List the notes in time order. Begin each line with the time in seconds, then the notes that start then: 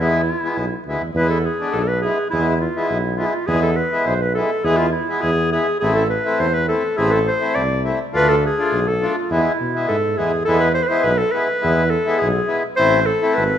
0.00 E2 G#3 B3 E4
0.44 G#3 B3 E4
0.57 B1
0.86 D2 G#3 B3 E4
1.01 E2
1.15 E2 G#3 B3 E4 B4
1.30 A4
1.45 G#4
1.61 G#3 B3 D4
1.73 B1 G#4 A4
1.81 A4
1.88 B4
2.01 G#3 B3 E4 G#4
2.30 E2 G#3 B3 E4
2.61 F4
2.76 G#3 B3 E4
2.87 B1 E4
3.17 G#3 B3 E4 F4
3.25 E4
3.32 F4
3.47 E2 G#3 B3 E4 G#4
3.62 A4
3.76 B4
3.92 G#3 B3 E4
4.06 B1 C5
4.21 B4
4.35 G#3 B3 E4 A4
4.64 E2 G#3 B3 E4 G#4
4.77 F4
4.92 E4
5.09 G#3 B3 E4
5.22 E2 G#4
5.52 G#3 B3 E4 G#4
5.80 A1 A3 C4 E4 G#4
5.95 A4
6.10 B4
6.25 A3 C4 E4
6.40 E2 C5
6.53 B4
6.68 A3 C4 E4 A4
6.97 A1 A3 C4 E4 G#4
7.10 A4 B4
7.27 C5
7.41 A3 C4 E4
7.55 C2 D5
7.84 A3 C4 E4
8.13 D2 A3 D4 F4 B4
8.29 A4
8.46 G#4
8.59 A3 D4 F4
8.72 B1
8.88 A4
9.01 A3 D4 F4
9.15 F4
9.31 E2 G#3 B3 E4
9.60 B2
9.75 G#3 B3 E4
9.88 G#2 A4
10.17 E2 G#3 B3 E4 G#4
10.45 E2 G#3 B3 E4 A4
10.60 B4
10.74 C5
10.82 B4
10.88 G#3 B3 E4 C5
11.03 B1 B4
11.18 A4
11.32 G#3 B3 E4 B4
11.61 E2 G#3 B3 E4
11.90 A4
12.06 G#3 B3 E4
12.19 B1 G#4
12.48 G#3 B3 E4
12.76 A1 A3 C4 E4 C5
13.06 A4
13.22 A3 C4 E4
13.34 G#1 B4